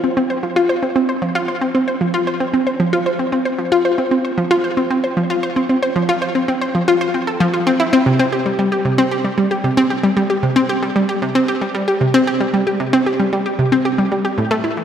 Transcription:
0.04 0.09 C4 medium
0.17 0.25 C4 medium
0.30 0.38 C5 medium
0.43 0.55 F3 medium
0.56 0.64 F4 loud
0.69 0.74 C5 medium
0.83 0.87 C4 medium
0.96 1.04 C4 medium
1.09 1.17 C5 medium
1.22 1.34 F3 medium
1.35 1.43 F4 loud
1.48 1.53 C5 medium
1.61 1.66 C4 medium
1.75 1.83 C4 medium
1.88 1.96 C5 medium
2.01 2.13 F3 medium
2.14 2.22 F4 loud
2.27 2.32 C5 medium
2.40 2.45 C4 medium
2.54 2.62 C4 medium
2.67 2.75 C5 medium
2.80 2.92 F3 medium
2.93 3.01 F4 medium
3.06 3.11 C5 medium
3.19 3.24 C4 medium
3.32 3.41 C4 medium
3.45 3.54 C5 medium
3.59 3.71 F3 medium
3.72 3.80 F4 loud
3.85 3.90 C5 medium
3.98 4.03 C4 medium
4.11 4.20 C4 medium
4.25 4.33 C5 medium
4.38 4.50 F3 medium
4.51 4.59 F4 loud
4.64 4.69 C5 medium
4.77 4.82 C4 medium
4.90 4.99 C4 medium
5.04 5.12 C5 medium
5.17 5.29 F3 medium
5.30 5.38 F4 loud
5.43 5.48 C5 medium
5.56 5.61 C4 medium
5.69 5.78 C4 medium
5.83 5.91 C5 medium
5.96 6.08 F3 medium
6.09 6.17 F4 loud
6.22 6.27 C5 medium
6.35 6.40 C4 medium
6.48 6.57 C4 medium
6.61 6.70 C5 medium
6.75 6.87 F3 medium
6.88 6.96 F4 loud
7.01 7.06 C5 medium
7.14 7.19 C4 medium
7.27 7.40 A4 medium
7.40 7.53 F3 loud
7.54 7.59 F4 medium
7.67 7.72 C4 loud
7.80 7.92 E4 medium
7.93 7.98 C4 loud
8.06 8.19 C3 medium
8.19 8.28 C4 loud
8.32 8.37 G4 medium
8.46 8.51 G3 medium
8.59 8.67 G3 medium
8.72 8.80 G4 medium
8.85 8.97 C3 medium
8.98 9.07 C4 loud
9.11 9.16 G4 medium
9.24 9.30 G3 medium
9.38 9.46 G3 medium
9.51 9.59 G4 medium
9.64 9.76 C3 medium
9.77 9.86 C4 loud
9.90 9.95 G4 medium
10.03 10.08 G3 medium
10.17 10.25 G3 medium
10.30 10.38 G4 medium
10.43 10.55 C3 medium
10.56 10.64 C4 loud
10.69 10.74 G4 medium
10.82 10.87 G3 medium
10.96 11.04 G3 medium
11.09 11.17 G4 medium
11.22 11.34 C3 medium
11.35 11.43 C4 loud
11.48 11.53 G4 medium
11.61 11.66 G3 medium
11.75 11.83 G3 medium
11.88 11.96 G4 medium
12.01 12.13 C3 medium
12.14 12.22 C4 loud
12.27 12.32 G4 medium
12.40 12.45 G3 medium
12.54 12.62 G3 medium
12.67 12.75 G4 medium
12.80 12.92 C3 medium
12.93 13.01 C4 loud
13.06 13.11 G4 medium
13.20 13.24 G3 medium
13.33 13.41 G3 medium
13.46 13.54 G4 medium
13.59 13.71 C3 medium
13.72 13.80 C4 loud
13.85 13.90 G4 medium
13.98 14.03 G3 medium
14.12 14.20 G3 medium
14.25 14.33 G4 medium
14.38 14.50 A2 medium
14.51 14.59 A3 loud
14.64 14.69 E4 medium
14.77 14.82 E3 medium

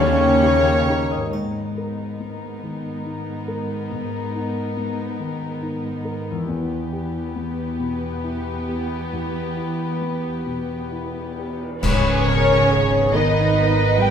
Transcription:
0.00 0.41 D#2 medium
0.00 1.12 D#2 medium
0.00 1.32 C#3 medium
0.00 0.41 D#3 medium
0.00 1.36 D#3 medium
0.00 1.12 A#3 medium
0.00 1.12 C#4 medium
0.00 1.32 C#4 medium
0.00 1.12 G4 medium
0.00 1.32 C#5 medium
0.00 1.33 C#5 medium
0.19 4.09 A#3 medium
0.42 0.84 A#3 soft
0.42 1.22 D#4 medium
0.42 0.84 D#4 medium
0.42 0.84 G4 medium
0.64 1.36 G4 medium
0.88 1.29 A#3 soft
0.88 1.29 D#4 soft
0.88 1.29 G4 soft
0.88 1.27 A#4 medium
1.11 5.05 G#2 soft
1.11 5.01 D#5 medium
1.19 5.09 B3 soft
1.24 5.14 D#4 soft
1.28 6.45 B3 soft
1.28 5.18 A#4 soft
1.32 6.45 G#2 soft
1.32 3.89 G#2 soft
1.32 6.45 D#4 soft
1.32 6.45 A#4 soft
1.32 triangle soft
1.78 2.46 A#4 soft
2.20 2.89 B3 soft
2.63 3.32 D#3 soft
3.05 3.75 D#4 soft
3.48 4.18 A#4 soft
3.92 6.45 G#2 soft
4.35 5.04 D#4 soft
4.77 5.46 B3 soft
5.20 5.89 D#3 soft
5.62 6.31 D#4 soft
6.05 6.48 A#4 soft
6.30 10.20 E2 soft
6.35 10.25 B3 soft
6.39 10.29 E4 soft
6.44 10.34 G4 soft
6.48 9.08 E2 soft
6.48 11.63 E2 soft
6.48 11.58 B3 medium
6.48 11.58 G4 medium
6.48 11.59 B4 medium
6.92 7.62 G4 soft
7.36 8.06 B3 soft
7.80 8.50 B2 soft
8.24 8.95 E4 soft
8.68 9.40 G4 soft
9.13 11.79 E2 soft
9.57 10.29 E4 soft
10.01 10.74 B3 soft
10.46 11.19 B2 soft
10.91 11.64 E4 soft
11.38 11.83 G4 soft
11.83 14.10 G#1 medium
11.83 13.10 G#2 medium
11.83 14.10 G#2 medium
11.83 13.11 C#3 medium
11.83 14.10 D#3 medium
11.83 14.10 B3 medium
11.83 13.11 C#4 medium
11.83 12.24 B4 medium
11.83 13.10 C#5 loud
11.83 13.17 C#5 medium
11.83 concert bass drum medium
11.83 crash medium
12.26 14.10 B2 soft
12.26 12.71 A#4 medium
12.70 13.15 G#4 medium
12.70 14.10 A#4 soft
13.13 14.01 D#3 medium
13.13 14.10 B3 soft
13.13 14.00 D#4 medium
13.13 14.10 D#4 soft
13.13 14.10 A#4 soft
13.13 14.10 B4 medium
13.13 14.00 D#5 medium
13.13 14.02 D#5 medium
13.99 14.10 G3 medium
13.99 14.10 D#4 medium
13.99 14.10 G4 medium
13.99 14.10 G5 medium

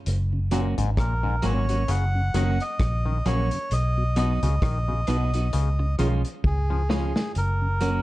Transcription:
0.06 0.74 F#1 loud
0.06 closed hi-hat medium
0.33 0.40 F#2 medium
0.33 0.40 C#3 medium
0.51 0.68 A#2 medium
0.51 0.74 F#3 medium
0.51 0.61 A#3 medium
0.51 0.74 A#3 medium
0.51 0.61 C#4 medium
0.51 0.74 C#4 medium
0.51 0.61 F#4 medium
0.51 0.74 F#4 medium
0.51 closed hi-hat medium
0.78 0.96 G#1 medium
0.78 0.85 F#2 medium
0.78 0.90 G#2 medium
0.78 0.85 C#3 medium
0.78 closed hi-hat medium
0.97 1.39 A#1 medium
0.97 1.14 A#2 medium
0.97 1.45 A#4 loud
0.97 kick loud
0.97 cross-stick loud
0.97 closed hi-hat medium
1.23 1.31 F#2 medium
1.23 1.35 G#2 medium
1.23 1.31 C#3 medium
1.42 1.85 G#1 medium
1.42 1.59 A#2 medium
1.42 1.65 F#3 medium
1.42 1.65 A#3 loud
1.42 1.53 A#3 medium
1.42 1.65 C#4 medium
1.42 1.53 C#4 medium
1.42 1.65 F#4 loud
1.42 1.53 F#4 medium
1.42 1.91 C#5 loud
1.42 closed hi-hat medium
1.69 1.83 F#3 medium
1.69 1.83 A#3 medium
1.69 1.76 C#4 medium
1.69 1.82 C#4 medium
1.69 1.82 F#4 medium
1.69 1.76 F#4 medium
1.69 closed hi-hat medium
1.88 2.30 F#1 loud
1.88 2.04 C#3 medium
1.88 2.63 F#5 loud
1.88 closed hi-hat loud
2.15 2.22 F#2 medium
2.15 2.22 C#3 medium
2.34 2.57 F#1 medium
2.34 2.50 D#3 medium
2.34 2.56 F#3 medium
2.34 2.43 A#3 medium
2.34 2.57 A#3 medium
2.34 2.44 C#4 medium
2.34 2.57 C#4 medium
2.34 2.44 F#4 medium
2.34 2.57 F#4 loud
2.34 closed hi-hat medium
2.60 3.28 D#5 loud
2.60 closed hi-hat soft
2.79 3.21 A#1 loud
2.79 kick loud
2.79 cross-stick loud
2.79 closed hi-hat medium
3.06 3.13 F#2 medium
3.06 3.13 C#3 medium
3.06 3.18 D#3 medium
3.26 3.49 A#1 medium
3.26 3.42 C#3 medium
3.26 3.48 F#3 medium
3.26 3.35 A#3 medium
3.26 3.48 A#3 medium
3.26 3.35 C#4 medium
3.26 3.48 C#4 medium
3.26 3.35 F#4 medium
3.26 3.48 F#4 medium
3.26 3.73 C#5 medium
3.26 closed hi-hat medium
3.51 3.59 F#2 medium
3.51 3.59 C#3 medium
3.51 closed hi-hat medium
3.71 4.39 B1 loud
3.71 4.17 D#5 loud
3.71 closed hi-hat medium
3.97 4.04 B2 medium
3.97 4.04 F#3 medium
4.16 4.33 B2 medium
4.16 4.38 F#3 medium
4.16 4.39 B3 medium
4.16 4.26 B3 medium
4.16 4.39 D#4 medium
4.16 4.26 D#4 medium
4.16 4.26 F#4 medium
4.16 4.39 F#4 loud
4.16 5.96 D#5 loud
4.16 closed hi-hat medium
4.43 4.60 C#2 loud
4.43 4.50 B2 medium
4.43 4.55 C#3 medium
4.43 4.50 F#3 medium
4.43 closed hi-hat medium
4.62 5.04 A#1 medium
4.62 4.78 D#3 medium
4.62 kick loud
4.62 cross-stick loud
4.62 closed hi-hat loud
4.88 4.95 B2 medium
4.88 5.00 C#3 medium
4.88 4.95 F#3 medium
5.07 5.49 B1 loud
5.07 5.24 B2 medium
5.07 5.30 F#3 medium
5.07 5.17 B3 medium
5.07 5.30 B3 medium
5.07 5.17 D#4 medium
5.07 5.30 D#4 medium
5.07 5.17 F#4 medium
5.07 5.30 F#4 medium
5.07 closed hi-hat medium
5.34 5.47 F#3 medium
5.34 5.47 B3 medium
5.34 5.41 D#4 medium
5.34 5.47 D#4 medium
5.34 5.47 F#4 medium
5.34 5.41 F#4 medium
5.34 closed hi-hat medium
5.53 5.95 C#2 loud
5.53 5.69 C#3 medium
5.53 closed hi-hat medium
5.79 5.86 C#3 medium
5.79 muted clean electric guitar stroke medium
5.99 6.22 B1 medium
5.99 6.15 D#3 medium
5.99 6.21 F3 medium
5.99 6.08 G#3 medium
5.99 6.21 G#3 medium
5.99 6.08 C#4 medium
5.99 6.21 C#4 medium
5.99 6.08 F4 medium
5.99 6.21 F4 medium
5.99 closed hi-hat medium
6.25 closed hi-hat soft
6.44 7.12 C#2 medium
6.44 7.32 G#4 loud
6.44 kick loud
6.70 6.77 C#3 medium
6.70 6.82 F3 medium
6.70 muted clean electric guitar stroke soft
6.89 7.06 C#3 medium
6.89 7.12 F3 medium
6.89 6.99 G#3 medium
6.89 7.12 G#3 medium
6.89 6.99 C#4 medium
6.89 7.12 C#4 medium
6.89 6.99 F4 medium
6.89 7.12 F4 loud
6.89 snare medium
7.16 7.23 C#3 medium
7.16 snare medium
7.35 8.02 F#1 loud
7.35 8.02 A#4 loud
7.35 closed hi-hat medium
7.62 7.68 F#2 medium
7.62 7.68 C#3 medium
7.81 8.02 F#3 medium
7.81 7.90 A#3 medium
7.81 8.02 A#3 medium
7.81 7.90 C#4 medium
7.81 8.02 C#4 medium
7.81 7.91 F#4 medium
7.81 8.02 F#4 medium
7.81 closed hi-hat medium

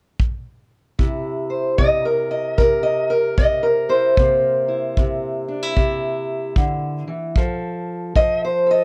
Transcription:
0.20 kick medium
0.99 1.79 C3 medium
0.99 3.87 E4 soft
0.99 kick medium
1.50 1.78 C5 soft
1.78 2.59 C3 medium
1.78 2.05 D#5 medium
1.78 kick medium
2.05 2.57 A#4 medium
2.31 2.58 D#5 medium
2.58 3.37 C3 medium
2.58 3.09 A#4 medium
2.58 kick medium
2.83 3.10 D#5 medium
3.10 3.62 A#4 medium
3.38 4.17 C3 medium
3.38 3.64 D#5 medium
3.38 kick medium
3.63 4.66 A#4 medium
3.89 4.15 E4 soft
3.89 7.09 C5 medium
4.17 4.97 C3 medium
4.17 7.37 A#3 soft
4.17 kick medium
4.68 5.47 E4 soft
4.97 5.75 C3 medium
4.97 kick medium
5.48 5.63 D4 soft
5.63 7.36 E4 soft
5.76 6.56 C3 medium
5.76 kick medium
6.56 7.06 D3 medium
6.56 kick medium
7.08 7.37 E3 medium
7.36 8.16 F3 medium
7.36 8.66 A4 soft
7.36 kick medium
8.16 8.84 F3 medium
8.16 8.42 D#5 loud
8.16 kick medium
8.45 8.70 C5 medium
8.66 8.84 A4 soft
8.71 8.84 D#5 medium

